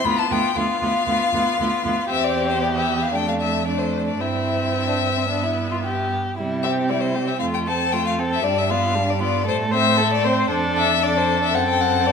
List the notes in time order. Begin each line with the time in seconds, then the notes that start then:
0.05 D2 B3 F4 B5
0.19 A5
0.30 D2 B3 F4 G5
0.56 D2 B3 F4 F5
0.81 D2 B3 F4
1.07 D2 B3 F4
1.33 D2 B3 F4
1.59 D2 B3 F4
1.84 D2 B3 F4
2.10 E2 C4 G4 E5
2.24 D5
2.50 C5
2.62 B3 D5
2.76 E5
3.02 F5
3.13 F2 A3 D4 G5
3.28 F5
3.40 E5
3.66 A3 D4 D5
3.78 C5
4.07 D5
4.20 G2 C4 E4 E5
4.75 E4
4.88 D4
5.17 C4
5.29 B3 D4
5.44 E4
5.71 F4
5.85 G4
6.37 C3 G3 E4
6.63 C4 G4 E5
6.89 G3 E4 D5
7.01 C5
7.15 C4 G4
7.27 E5
7.39 F2 A3 F4 F5
7.54 G5
7.67 C4 A4 A5
7.92 A3 F4 G5
8.06 F5
8.19 C4 A4
8.33 E5
8.43 G2 G3 D4 D5
8.58 E5
8.70 B3 F4 F5
8.94 G3 D4
9.10 D5
9.20 B3 F4 D5
9.47 A2 A3 A4 C5
9.71 C4 C5 E5
9.97 A3 A4
10.14 D5
10.24 C4 C5
10.50 F2 D4 A4
10.77 E5
11.02 D4 A4 D5
11.17 C5
11.43 E5
11.54 F#2 C4 A4 F#5
11.69 G5
11.81 F#5
12.07 D5